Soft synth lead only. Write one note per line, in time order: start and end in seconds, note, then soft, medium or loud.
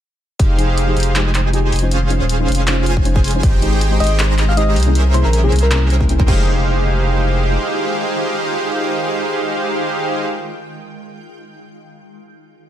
4.00 4.11 D#5 medium
4.49 4.56 F5 loud
4.57 4.75 D#5 loud
5.14 5.23 C5 medium
5.25 5.30 A#4 medium
5.33 5.40 A#4 medium
5.44 5.53 G#4 loud
5.63 5.68 A#4 medium
5.71 5.78 A#4 medium